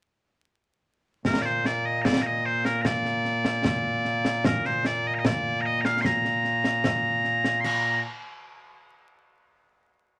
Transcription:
1.25 8.02 A#2 medium
1.25 8.02 A#3 medium
1.25 1.42 A#4 medium
1.25 concert bass drum medium
1.25 snare medium
1.42 1.66 C5 medium
1.42 1.45 D5 medium
1.42 snare soft
1.65 1.86 D5 medium
1.65 snare medium
1.86 2.02 D#5 medium
2.02 2.22 D5 medium
2.02 2.05 A#5 medium
2.02 concert bass drum soft
2.02 snare loud
2.22 2.26 A#5 medium
2.26 2.46 D#5 medium
2.46 2.65 C5 medium
2.65 2.82 A#4 medium
2.65 snare medium
2.82 2.86 A#5 medium
2.82 concert bass drum soft
2.82 snare medium
2.86 4.46 D5 medium
3.05 snare soft
3.25 snare soft
3.45 snare medium
3.65 concert bass drum medium
3.65 snare medium
4.05 snare soft
4.25 snare medium
4.45 4.66 A#4 medium
4.45 concert bass drum medium
4.45 snare loud
4.65 4.86 C5 medium
4.65 snare soft
4.85 5.07 D5 medium
4.85 snare medium
5.07 5.14 D#5 medium
5.14 5.19 A#5 medium
5.19 5.26 D#5 medium
5.25 5.61 D5 medium
5.25 concert bass drum medium
5.25 snare loud
5.61 5.66 A#5 medium
5.66 5.81 D#5 medium
5.81 6.01 F5 medium
5.81 5.85 A#5 medium
5.81 snare medium
6.01 6.05 C6 loud
6.01 concert bass drum soft
6.01 snare medium
6.05 7.60 A#5 loud
6.25 snare soft
6.44 snare soft
6.64 snare medium
6.84 concert bass drum soft
6.84 snare medium
7.24 snare soft
7.44 snare medium
7.60 7.64 C6 medium
7.64 8.02 A#5 medium
7.64 crash medium

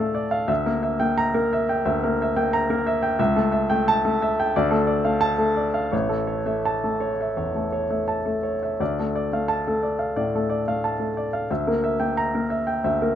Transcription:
0.00 0.52 A2 soft
0.00 0.52 A3 medium
0.00 0.52 A4 medium
0.00 0.15 D5 medium
0.00 0.31 F5 medium
0.00 0.52 A5 medium
0.15 0.42 D5 medium
0.31 0.49 F5 medium
0.48 1.82 D2 medium
0.48 0.76 E5 medium
0.66 0.94 A#3 medium
0.66 0.94 A#4 medium
0.83 1.11 E5 medium
1.00 1.28 A#3 medium
1.00 1.28 G5 medium
1.18 1.46 A#5 medium
1.34 1.62 A#3 medium
1.34 1.62 A#4 medium
1.53 1.80 E5 medium
1.69 1.96 G5 medium
1.85 3.14 D2 medium
1.85 2.13 E5 medium
2.04 2.30 A#3 medium
2.04 2.30 A#4 medium
2.22 2.48 E5 medium
2.36 2.63 A#3 medium
2.36 2.63 G5 medium
2.53 2.80 A#5 medium
2.70 2.96 A#3 medium
2.70 2.96 A#4 medium
2.87 3.12 E5 medium
3.03 3.19 G5 medium
3.19 4.50 C#2 medium
3.19 3.46 E5 medium
3.36 3.63 A3 medium
3.36 3.63 A4 medium
3.52 3.79 E5 medium
3.70 3.97 A3 medium
3.70 3.96 G5 medium
3.88 4.14 A5 medium
4.05 4.31 A3 medium
4.05 4.31 A4 medium
4.22 4.48 E5 medium
4.40 4.55 G5 medium
4.56 5.89 D2 medium
4.56 4.82 D5 medium
4.71 4.98 A3 medium
4.71 4.98 A4 medium
4.87 5.15 D5 medium
5.05 5.32 A3 medium
5.05 5.32 F5 medium
5.21 5.49 A5 medium
5.38 5.66 A3 medium
5.38 5.66 A4 soft
5.56 5.85 D5 medium
5.74 5.92 F5 medium
5.92 7.32 A1 medium
5.92 6.21 C#5 medium
6.09 6.38 A3 soft
6.09 6.38 A4 soft
6.27 6.56 C#5 medium
6.46 6.75 A3 soft
6.46 6.75 E5 medium
6.65 6.93 A5 medium
6.84 7.12 A3 soft
6.84 7.12 A4 soft
7.00 7.29 C#5 soft
7.21 7.48 E5 soft
7.37 7.66 E2 soft
7.37 7.66 C#5 soft
7.55 7.84 A3 soft
7.55 7.84 A4 soft
7.72 8.01 C#5 soft
7.90 8.19 A3 soft
7.90 8.19 E5 soft
8.08 8.37 A5 medium
8.25 8.55 A3 soft
8.25 8.55 A4 soft
8.43 8.73 C#5 soft
8.63 8.80 E5 soft
8.80 10.13 D2 medium
8.80 9.08 D5 medium
9.00 9.27 A3 soft
9.00 9.27 A4 soft
9.15 9.43 D5 medium
9.33 9.60 A3 soft
9.33 9.60 F5 soft
9.48 9.76 A5 medium
9.68 9.94 A3 soft
9.68 9.94 A4 soft
9.83 10.10 D5 soft
9.99 10.26 F5 soft
10.16 10.44 A2 soft
10.16 10.43 D5 soft
10.35 10.61 A3 soft
10.35 10.61 A4 soft
10.50 10.76 D5 soft
10.68 10.93 A3 soft
10.68 10.93 F5 medium
10.84 11.10 A5 medium
10.99 11.26 A3 soft
10.99 11.26 A4 soft
11.17 11.43 D5 soft
11.33 11.50 F5 medium
11.51 12.79 D2 medium
11.51 11.77 E5 soft
11.67 11.94 A#3 soft
11.67 11.93 A#4 soft
11.84 12.10 E5 medium
12.00 12.26 A#3 soft
12.00 12.26 G5 medium
12.17 12.43 A#5 medium
12.34 12.60 A#3 soft
12.34 12.60 A#4 soft
12.50 12.77 E5 medium
12.67 12.93 G5 medium
12.84 13.15 D2 medium
12.84 13.10 E5 medium
13.02 13.15 A#3 soft
13.02 13.15 A#4 medium

